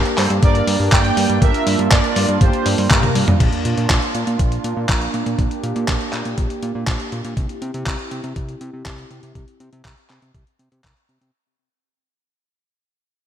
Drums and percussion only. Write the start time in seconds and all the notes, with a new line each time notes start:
0.05 closed hi-hat
0.18 clap, open hi-hat
0.30 closed hi-hat
0.43 kick, closed hi-hat
0.55 closed hi-hat
0.67 open hi-hat
0.92 kick, clap, closed hi-hat
1.05 closed hi-hat
1.17 open hi-hat
1.30 closed hi-hat
1.42 kick, closed hi-hat
1.54 closed hi-hat
1.67 open hi-hat
1.79 closed hi-hat
1.91 kick, clap, closed hi-hat
2.04 closed hi-hat
2.16 open hi-hat
2.29 closed hi-hat
2.41 kick, closed hi-hat
2.53 closed hi-hat
2.66 open hi-hat
2.78 open hi-hat
2.91 kick, clap, closed hi-hat, high tom
3.03 closed hi-hat, high tom
3.15 open hi-hat
3.28 mid tom
3.40 kick, closed hi-hat, crash
3.53 closed hi-hat
3.65 closed hi-hat
3.78 closed hi-hat
3.90 kick, clap, closed hi-hat
4.02 closed hi-hat
4.15 closed hi-hat
4.27 closed hi-hat
4.39 kick, closed hi-hat
4.52 closed hi-hat
4.64 closed hi-hat
4.89 kick, clap, closed hi-hat
5.01 closed hi-hat
5.14 closed hi-hat
5.26 closed hi-hat
5.39 kick, closed hi-hat
5.51 closed hi-hat
5.64 closed hi-hat
5.76 closed hi-hat
5.88 kick, clap, closed hi-hat
6.01 closed hi-hat
6.13 clap, closed hi-hat
6.25 closed hi-hat
6.38 kick, closed hi-hat
6.50 closed hi-hat
6.63 closed hi-hat
6.87 kick, clap, closed hi-hat
7.00 closed hi-hat
7.12 closed hi-hat
7.25 closed hi-hat
7.37 kick, closed hi-hat
7.49 closed hi-hat
7.62 closed hi-hat
7.74 closed hi-hat
7.87 kick, clap, closed hi-hat
7.99 closed hi-hat
8.11 closed hi-hat
8.24 closed hi-hat
8.36 kick, closed hi-hat
8.49 closed hi-hat
8.61 closed hi-hat
8.86 kick, clap, closed hi-hat
8.98 closed hi-hat
9.11 closed hi-hat
9.23 closed hi-hat
9.35 kick, closed hi-hat
9.48 closed hi-hat
9.60 closed hi-hat
9.73 closed hi-hat
9.85 kick, clap, closed hi-hat
9.97 closed hi-hat
10.10 clap, closed hi-hat
10.22 closed hi-hat
10.35 kick, closed hi-hat
10.47 closed hi-hat
10.59 closed hi-hat
10.72 closed hi-hat
10.84 kick, clap, closed hi-hat
10.97 closed hi-hat
11.09 closed hi-hat
11.21 closed hi-hat